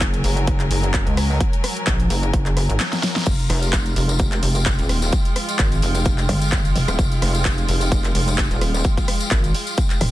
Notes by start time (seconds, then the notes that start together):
Already playing: F#1 F#3 A#3 F4 G#4 A#4 G#5
0.01 kick, clap, closed hi-hat
0.14 closed hi-hat
0.24 F#1, open hi-hat
0.37 closed hi-hat
0.47 kick, closed hi-hat
0.60 clap, closed hi-hat
0.71 F#1, open hi-hat
0.83 closed hi-hat
0.94 kick, clap, closed hi-hat
1.07 C#2, closed hi-hat
1.17 cross-stick, open hi-hat
1.41 kick, closed hi-hat
1.53 closed hi-hat
1.64 cross-stick, open hi-hat
1.77 closed hi-hat
1.87 A#1, kick, clap, closed hi-hat
2.00 closed hi-hat
2.10 F#1, open hi-hat
2.23 closed hi-hat
2.34 F#1, kick, closed hi-hat
2.46 clap, closed hi-hat
2.57 cross-stick, open hi-hat
2.69 G#1, closed hi-hat
2.80 snare, clap, closed hi-hat
2.93 snare, closed hi-hat
3.03 snare, open hi-hat
3.16 snare, closed hi-hat
3.26 F1 G#3 F4 G4, kick, closed hi-hat, crash, tambourine
3.39 closed hi-hat, tambourine
3.50 F1, cross-stick, open hi-hat
3.56 G#3
3.62 closed hi-hat, tambourine
3.73 kick, clap, closed hi-hat, tambourine
3.86 closed hi-hat, tambourine
3.96 F1, open hi-hat
4.09 closed hi-hat, tambourine
4.19 G5, kick, closed hi-hat, tambourine
4.32 clap, closed hi-hat, tambourine
4.43 F1, open hi-hat
4.55 closed hi-hat, tambourine
4.66 kick, clap, closed hi-hat
4.79 D#1, closed hi-hat, tambourine
4.89 cross-stick, open hi-hat
5.02 tambourine
5.12 kick, closed hi-hat, tambourine
5.25 closed hi-hat, tambourine
5.36 cross-stick, open hi-hat
5.49 closed hi-hat, tambourine
5.59 G#1, kick, clap, closed hi-hat, tambourine
5.72 closed hi-hat, tambourine
5.82 F1, open hi-hat
5.95 closed hi-hat, tambourine
6.05 kick, closed hi-hat, tambourine
6.18 clap, closed hi-hat, tambourine
6.29 G1, cross-stick, open hi-hat
6.41 closed hi-hat, tambourine
6.52 kick, clap, closed hi-hat
6.65 closed hi-hat, tambourine
6.75 F1, open hi-hat
6.88 D#1, cross-stick, closed hi-hat, tambourine
6.99 F1, kick, closed hi-hat, tambourine
7.12 closed hi-hat, tambourine
7.22 F1, cross-stick, open hi-hat
7.34 closed hi-hat, tambourine
7.45 kick, clap, closed hi-hat
7.58 closed hi-hat, tambourine
7.68 F1, open hi-hat
7.81 closed hi-hat, tambourine
7.92 kick, closed hi-hat, tambourine
8.04 clap, closed hi-hat, tambourine
8.15 F1, open hi-hat
8.28 closed hi-hat, tambourine
8.38 kick, clap, closed hi-hat
8.51 D#1, closed hi-hat, tambourine
8.61 cross-stick, open hi-hat
8.74 tambourine
8.84 kick, closed hi-hat, tambourine
8.97 kick, closed hi-hat, tambourine
9.08 cross-stick, open hi-hat
9.20 closed hi-hat, tambourine
9.31 G#1, kick, clap, closed hi-hat
9.44 closed hi-hat, tambourine
9.54 open hi-hat
9.67 closed hi-hat, tambourine
9.77 kick, closed hi-hat, tambourine
9.90 clap, closed hi-hat, tambourine
10.01 D#1, cross-stick, open hi-hat